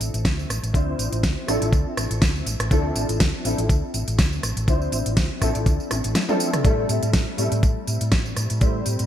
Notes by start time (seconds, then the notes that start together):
Already playing: F3 C4 D4 E4 A4
0.00 A1, open hi-hat, tambourine
0.14 A1, closed hi-hat, tambourine
0.25 D2, kick, snare, closed hi-hat, tambourine
0.39 tambourine
0.50 A1, cross-stick, open hi-hat, tambourine
0.63 A1, closed hi-hat, tambourine
0.73 D2 F3 C4 D4 E4 C5, kick, closed hi-hat, tambourine
0.99 A1, open hi-hat, tambourine
1.12 A1, closed hi-hat, tambourine
1.23 D2, kick, snare, closed hi-hat, tambourine
1.47 A1 F3 C4 D4 E4 A4, cross-stick, open hi-hat, tambourine
1.62 A1, closed hi-hat, tambourine
1.73 D2, kick, closed hi-hat, tambourine
1.97 A1, cross-stick, open hi-hat, tambourine
2.10 A1, closed hi-hat, tambourine
2.22 D2, kick, snare, closed hi-hat, tambourine
2.36 tambourine
2.46 A1, open hi-hat, tambourine
2.60 A1, cross-stick, closed hi-hat, tambourine
2.70 D2 F3 C4 D4 E4 A4, kick, closed hi-hat, tambourine
2.96 A1, open hi-hat, tambourine
3.09 A1, closed hi-hat, tambourine
3.20 D2, kick, snare, closed hi-hat, tambourine
3.44 A1 F3 C4 D4 E4 A4, open hi-hat, tambourine
3.58 A1, closed hi-hat, tambourine
3.69 D2, kick, closed hi-hat, tambourine
3.94 A1, open hi-hat, tambourine
4.08 A1, closed hi-hat, tambourine
4.19 D2, kick, snare, closed hi-hat, tambourine
4.33 tambourine
4.43 A1, cross-stick, open hi-hat, tambourine
4.57 A1, closed hi-hat, tambourine
4.67 D2 F3 C4 D4 E4 C5, kick, closed hi-hat, tambourine
4.82 tambourine
4.92 A1, open hi-hat, tambourine
5.06 A1, closed hi-hat, tambourine
5.17 D2, kick, snare, closed hi-hat, tambourine
5.40 A1 F3 C4 D4 E4 A4, kick, cross-stick, open hi-hat, tambourine
5.55 A1, closed hi-hat, tambourine
5.66 D2, kick, closed hi-hat, tambourine
5.80 tambourine
5.91 A1, cross-stick, open hi-hat, high tom, tambourine
6.04 A1, closed hi-hat, tambourine
6.15 snare, closed hi-hat, mid tom, tambourine
6.28 F3 C4 D4 E4 A4, mid tom, tambourine
6.40 open hi-hat, tambourine
6.53 cross-stick, closed hi-hat, mid tom, tambourine
6.64 A1 G3 A3 C4 E4 A4, kick, closed hi-hat, tambourine
6.89 A2, open hi-hat, tambourine
7.03 A2, closed hi-hat, tambourine
7.13 A1, kick, snare, closed hi-hat, tambourine
7.37 A2 G3 A3 C4 E4 A4, open hi-hat, tambourine
7.52 A2, closed hi-hat, tambourine
7.63 A1, kick, closed hi-hat, tambourine
7.87 A2, open hi-hat, tambourine
8.01 A2, closed hi-hat, tambourine
8.12 A1, kick, snare, closed hi-hat, tambourine
8.26 tambourine
8.37 A2, cross-stick, open hi-hat, tambourine
8.50 A2, closed hi-hat, tambourine
8.60 A1 G3 A3 C4 E4 C5, kick, closed hi-hat, tambourine
8.86 A2, open hi-hat, tambourine
8.99 A2, closed hi-hat, tambourine